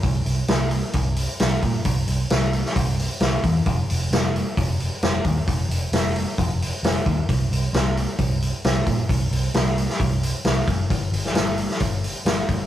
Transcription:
<<
  \new Staff \with { instrumentName = "Picked electric bass" } { \clef bass \time 4/4 \key f \major \tempo 4 = 132 c,8 c,8 c,4 c,4 c,8 bes,8 | c,8 c,8 c,4 c,4 c,8 e,8 | f,,8 f,,8 f,,4 f,,4 f,,8 ees,8 | f,,8 f,,8 f,,4 f,,4 f,,8 ees,8 |
c,8 c,8 c,4 c,4 c,8 bes,8 | c,8 c,8 c,4 c,4 c,8 fis,,8 | g,,8 g,,8 g,,4 g,,4 g,,8 g,,8 | }
  \new DrumStaff \with { instrumentName = "Drums" } \drummode { \time 4/4 <hho bd>8 hho8 <hho sn>8 hho8 <hho bd>8 hho8 <hho sn>8 <hho bd>8 | <hho bd>8 hho8 <hho sn>8 hho16 sn16 <hho bd>8 hho8 <hho sn>8 <hho bd>8 | <hho bd>8 hho8 <hho sn>8 hho8 <hho bd>8 hho8 <hho sn>8 <hho bd>8 | <hho bd>8 hho8 <hho sn>8 hho8 <hho bd>8 hho8 <hho sn>8 <hho bd>8 |
<hho bd>8 hho8 <hho sn>8 hho8 <hho bd>8 hho8 <hho sn>8 <hho bd>8 | <hho bd>8 hho8 <hho sn>8 hho16 sn16 <hho bd>8 hho8 <hho sn>8 <hho bd>8 | <hho bd>8 hho16 sn16 <hho sn>8 hho16 sn16 <hho bd>8 hho8 <hho sn>8 <hho bd>8 | }
>>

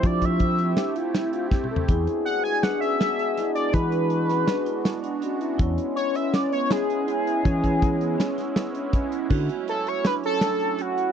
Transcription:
<<
  \new Staff \with { instrumentName = "Analog synth lead" } { \time 5/4 \key d \lydian \tempo 4 = 162 d''8 e''2 r2 r8 | r4 fis''8 gis''8 fis''8 e''2 d''8 | b'1 r4 | r4 cis''8 e''8 d''8 cis''8 gis'2~ |
gis'1 r4 | r4 a'8 cis''8 b'8 a'4. fis'4 | }
  \new Staff \with { instrumentName = "Trombone" } { \time 5/4 \key d \lydian e'4. r8 g'8 f'8 e'8 f'8 g'8 a'8 | gis'1~ gis'4~ | gis'2.~ gis'8 r8 fis'8 e'8 | cis'1 e'4 |
cis'2. b8 cis'8 cis'4 | r1 r4 | }
  \new Staff \with { instrumentName = "Vibraphone" } { \time 5/4 \key d \lydian d'8 d'4 c'8 d'8 e'4 d'8 c'4 | e'4 r8 e'8 d'8 cis'8 d'8 d'8 e'4 | d'8 d'4 cis'8 d'8 e'4 d'8 cis'4 | e'4 r8 e'8 cis'8 b8 cis'8 cis'8 e'4 |
cis'8 cis'4 b8 cis'8 e'4 d'8 cis'4 | fis'4 r8 fis'8 d'8 cis'8 d'8 d'8 fis'4 | }
  \new Staff \with { instrumentName = "Analog synth pad" } { \time 5/4 \key d \lydian <a c' e' g'>1~ <a c' e' g'>4 | <gis b d' fis'>1~ <gis b d' fis'>4~ | <gis b d' fis'>1~ <gis b d' fis'>4 | <gis b cis' e'>1~ <gis b cis' e'>4~ |
<gis b cis' e'>1~ <gis b cis' e'>4 | <fis a cis' e'>1~ <fis a cis' e'>4 | }
  \new Staff \with { instrumentName = "Fingered electric bass" } { \clef bass \time 5/4 \key d \lydian f2 r2. | e,8 r1 r8 | e2 r2. | e,8 r1 r8 |
e2 r2. | d8 r1 r8 | }
  \new DrumStaff \with { instrumentName = "Drums" } \drummode { \time 5/4 <hh bd>8 <hh bd>8 <hh bd>8 hh8 <hh sn>8 hh8 <hh sn>8 hh8 \tuplet 3/2 { <bd sn>8 toml8 tomfh8 } | <hh bd>8 hh8 hh8 hh8 <hh sn>8 hh8 <hh sn>8 hh8 <hh sn>8 hh8 | <hh bd>8 hh8 hh8 <hh sn>8 <hh sn>8 hh8 <hh sn>8 hh8 hh8 hh8 | <hh bd>8 hh8 hh8 hh8 <hh sn>8 hh8 <hh sn>8 hh8 hh8 hh8 |
<hh bd>8 <hh bd>8 <hh bd>8 hh8 <hh sn>8 <hh sn>8 <hh sn>8 hh8 <hh bd>8 hh8 | <cymc bd>8 hh8 hh8 hh8 <hh sn>8 hh8 <hh sn>8 hh8 hh8 hh8 | }
>>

